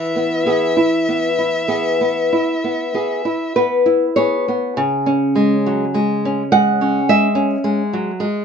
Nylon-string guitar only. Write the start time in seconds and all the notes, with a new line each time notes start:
Already playing: E3
0.16 B3
0.46 B3 G#4
0.77 E4
1.09 B3
1.39 E4
1.68 B3 G#4
2.01 B3
2.33 E4
2.64 B3
2.94 B3 G#4
3.25 E4
3.56 B3 B4
3.86 E4
4.16 B3 G#4 C#5
4.48 B3
4.77 C#3
5.06 C#4
5.36 G#3
5.66 F#3
5.94 G#3
6.25 C#4
6.52 G#3 F#5
6.81 C#4
7.09 G#3 E5
7.35 C#4
7.64 G#3
7.93 F#3
8.20 G#3